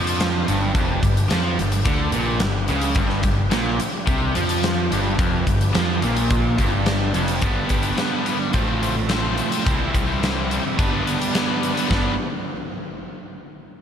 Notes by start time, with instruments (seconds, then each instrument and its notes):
Already playing: picked electric bass F2, overdriven electric guitar F3, tonewheel organ D4 G4 B4 G5
0.07 closed hi-hat
0.20 snare, closed hi-hat
0.46 picked electric bass G1, overdriven electric guitar G2, closed hi-hat
0.74 picked electric bass F1, overdriven electric guitar F2, tonewheel organ D4 G4 B4 G5, kick, closed hi-hat
1.02 picked electric bass G1, overdriven electric guitar G2, kick, closed hi-hat
1.17 closed hi-hat
1.29 picked electric bass F2, overdriven electric guitar F3, snare, closed hi-hat
1.57 picked electric bass G1, overdriven electric guitar G2, closed hi-hat
1.72 closed hi-hat
1.85 picked electric bass D2, overdriven electric guitar D3, kick, closed hi-hat
2.12 picked electric bass A#1, overdriven electric guitar A#2, closed hi-hat
2.40 picked electric bass G1, overdriven electric guitar G2, snare, closed hi-hat
2.68 picked electric bass C#2, overdriven electric guitar C#3, closed hi-hat
2.81 closed hi-hat
2.95 picked electric bass G1, overdriven electric guitar G2, tonewheel organ D4 G4 B4 G5, kick, closed hi-hat
3.09 snare
3.23 picked electric bass G1, overdriven electric guitar G2, kick, closed hi-hat
3.51 picked electric bass A#1, overdriven electric guitar A#2, snare, closed hi-hat
3.79 muted picked electric bass stroke, muted distorted electric guitar stroke, muted overdriven electric guitar stroke, closed hi-hat
4.07 picked electric bass C2, overdriven electric guitar C3, kick, closed hi-hat
4.35 picked electric bass F2, overdriven electric guitar F3, closed hi-hat
4.49 closed hi-hat
4.64 snare, closed hi-hat
4.90 picked electric bass G1, overdriven electric guitar G2, closed hi-hat
5.18 picked electric bass F1, overdriven electric guitar F2, tonewheel organ D4 G4 B4 G5, kick, closed hi-hat
5.47 picked electric bass G1, overdriven electric guitar G2, kick, closed hi-hat
5.61 closed hi-hat
5.74 picked electric bass F2, overdriven electric guitar F3, snare, closed hi-hat
6.02 picked electric bass A#1, overdriven electric guitar A#2, closed hi-hat
6.17 closed hi-hat
6.30 kick, closed hi-hat
6.58 picked electric bass G1, overdriven electric guitar G2, kick, closed hi-hat
6.86 snare, closed hi-hat
7.14 picked electric bass F1, overdriven electric guitar F2, closed hi-hat
7.28 closed hi-hat
7.41 picked electric bass G1, distorted electric guitar G2 D3 G4, overdriven electric guitar G3 B3 D4 B4, tonewheel organ D4 G4 B4 G5, kick, closed hi-hat
7.69 picked electric bass G1, kick, closed hi-hat
7.83 overdriven electric guitar B3 D4 B4, closed hi-hat
7.97 overdriven electric guitar G3 B3 D4 B4, snare, closed hi-hat
8.25 overdriven electric guitar G3 B3 D4 B4, closed hi-hat
8.39 muted overdriven electric guitar stroke
8.53 picked electric bass A1, overdriven electric guitar A2 A3 C4 F4 C5, distorted electric guitar F3, tonewheel organ F4 A4 F5, kick, closed hi-hat
8.57 tonewheel organ C4
8.66 overdriven electric guitar C4 F4 C5
8.80 overdriven electric guitar A3 C4 F4 C5, closed hi-hat
8.96 muted overdriven electric guitar stroke
9.09 overdriven electric guitar A2 A3 C4 F4 C5, snare, closed hi-hat
9.22 overdriven electric guitar C4 F4 C5
9.38 closed hi-hat
9.49 overdriven electric guitar C4 F4 C5, closed hi-hat
9.64 picked electric bass C2, overdriven electric guitar C3 E3 G3 C4 E4 C5, tonewheel organ C4 E4 E5, kick, closed hi-hat
9.68 tonewheel organ G4
9.94 picked electric bass C2, kick, closed hi-hat
10.07 overdriven electric guitar G3 C4 E4 C5
10.20 overdriven electric guitar C3 E3 G3 C4 E4 C5, snare, closed hi-hat
10.48 overdriven electric guitar G3 C4 E4 C5, closed hi-hat
10.64 muted overdriven electric guitar stroke
10.77 picked electric bass G1, distorted electric guitar G2 D3, overdriven electric guitar G3 B3 D4 B4, tonewheel organ B3 D4 G4 D5, kick, closed hi-hat
10.91 overdriven electric guitar B3 D4 B4
11.04 overdriven electric guitar G3 B3 D4 B4, closed hi-hat
11.20 muted overdriven electric guitar stroke, closed hi-hat
11.33 overdriven electric guitar G3 B3 D4 B4, snare, closed hi-hat
11.47 overdriven electric guitar B3 D4 B4
11.63 closed hi-hat
11.74 overdriven electric guitar B3 D4 B4, closed hi-hat
11.89 picked electric bass G1, distorted electric guitar G2 D3, overdriven electric guitar G3 B3 D4 B4, tonewheel organ B3 D4 G4 D5, kick, snare